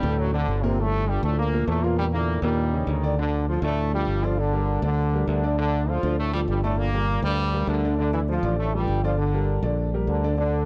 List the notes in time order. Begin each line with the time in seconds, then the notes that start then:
Already playing: G2 G3
0.03 D2 A2 A3 A4
0.19 F#2 F#3
0.33 C3 D3 C4 D4
0.48 G1
0.63 A#2 C3 A#3 C4 A#4
0.78 A2 D3 G3 A3 A4
1.08 G2 D3 G3 D4 F4
1.23 D2 A2 D3 A3 D4 F4
1.39 A#2 A#3
1.53 A#2 A#3 A#4
1.68 E2 A2 A#2 A3 A#3 A#4
1.83 A#2 F3 A#3 F4 A#4
1.98 G2 G3
2.13 A#2 D3 A#3 D4 E4
2.42 D#2 G2 A#2 G3 A#3 A#4
2.73 C#3 C#4 D#4
2.87 D2 D#3 D#4
3.03 D3 D4 D5
3.18 D3 D4 D5
3.48 F3 F4 A4
3.62 D2 A2 D3 A3 D4 D5
3.93 G2 F3 G3 F4 A4
4.07 G1
4.23 D3 F3 D4 F4 D5
4.39 D3 D4
4.53 G3 G4 A#4
4.82 D2 D3 D4 D5
5.13 G3 G4 A#4
5.27 D2 D3 D4
5.43 D3 D4 D5
5.58 D3 D4 D5
5.88 F3 F4 A4
6.03 D2 D3 D4 D5
6.19 A2 A3
6.33 G2 F3 G3 F4 A4
6.48 G1 G2 G3
6.63 A2 D3 A3 D4 D5
6.78 A#2 A#3
6.93 G3 G4 A#4
7.22 D2 G2 D3 G3 D4 D5
7.54 G3 G4 A#4
7.67 D2 D3 D4
7.84 D3 D4 D5
7.99 D3 D4 D5
8.14 E3 E4
8.29 F3 F4 A4
8.43 A1 D3 D4 D5
8.58 A2 A3
8.74 G2 F3 G3 F4 A4
8.88 G1
9.03 D3 F3 D4 F4 D5
9.18 D3 D4
9.34 G3 G4 A#4
9.63 A#1 D3 D4 D5
9.94 G3 G4 A#4
10.07 D2 D3 D4
10.24 D3 D4 D5
10.38 D3 D4 D5